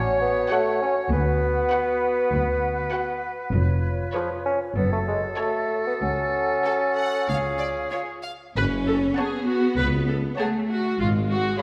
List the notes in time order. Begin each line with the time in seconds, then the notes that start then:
Already playing: A1 A2 C#4 F#4 C#5 F#5
0.21 B3
0.50 A3 F#4 C#5 F#5
0.82 C#4
1.11 D2 B3 B4
1.72 F#4 B4 F#5
2.32 D2
2.92 F#4 B4 F#5
3.53 F1 F2 F4 C#5
4.14 F3 G#4 B4 C#5
4.46 C#4
4.76 F#1 F#2 B3 F#4 A4
4.92 A3
5.08 G#3
5.37 A3 F#4 A4 C#5
5.87 B3
6.01 C#2 C#4 F#5
6.66 F#4 A4 C#5
6.97 F#5
7.28 C#2 F4 G#4 F5
7.59 D5
7.91 F4 C#5
8.23 F5
8.56 F#1 C#4 B4
8.87 A4
9.16 B3 G#4 C#5 F#5 A5
9.48 F#4
9.78 C#2 B4
10.09 A4
10.39 A3 G#4 C#5 F#5 A5
10.70 F#4
10.99 G#1 G#3 F4
11.30 F#4